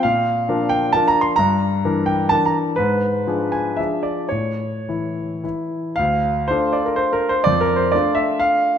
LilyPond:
\new Staff \with { instrumentName = "Grand piano" } { \time 3/4 \key d \minor \tempo 4 = 125 << { f''4. g''8 \tuplet 3/2 { a''8 bes''8 c'''8 } | bes''4. g''8 \tuplet 3/2 { a''8 bes''16 r8. } | b'4. gis''8 e''8 d''8 | cis''2 r4 |
f''4 c''8 d''16 bes'16 \tuplet 3/2 { c''8 bes'8 c''8 } | \tuplet 3/2 { d''8 bes'8 c''8 } d''8 e''8 f''4 | } \\ { bes,4 <f d' bes'>4 <f d' bes'>4 | g,4 <e d' bes'>4 <e d' bes'>4 | gis,4 <eis d' gis'>4 <eis d' gis'>4 | a,4 <e e'>4 <e e'>4 |
d,4 <a d' f'>2 | f,4 <a d' f'>2 | } >> }